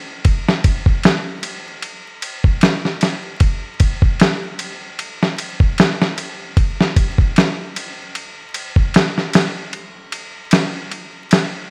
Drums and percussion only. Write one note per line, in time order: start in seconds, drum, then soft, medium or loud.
0.25 kick loud
0.25 ride medium
0.48 snare medium
0.64 kick loud
0.64 ride medium
0.86 kick medium
1.03 snare loud
1.03 ride medium
1.43 ride medium
1.82 ride medium
2.22 ride medium
2.44 kick loud
2.61 snare loud
2.61 ride medium
2.85 snare soft
3.01 snare medium
3.01 ride medium
3.40 kick loud
3.40 ride medium
3.80 kick loud
3.80 ride medium
4.02 kick loud
4.20 snare loud
4.20 ride medium
4.59 ride medium
4.99 ride medium
5.23 snare soft
5.38 ride medium
5.60 kick loud
5.78 snare loud
5.78 ride medium
6.02 snare medium
6.18 ride medium
6.57 kick loud
6.57 ride medium
6.81 snare medium
6.96 kick loud
6.96 ride medium
7.18 kick medium
7.36 snare loud
7.36 ride medium
7.76 ride medium
8.15 ride medium
8.54 ride medium
8.76 kick medium
8.94 snare loud
8.94 ride loud
9.18 snare soft
9.33 snare loud
9.33 ride medium
9.73 ride medium
10.12 ride medium
10.51 snare loud
10.51 ride medium
10.91 ride medium
11.31 snare loud
11.31 ride medium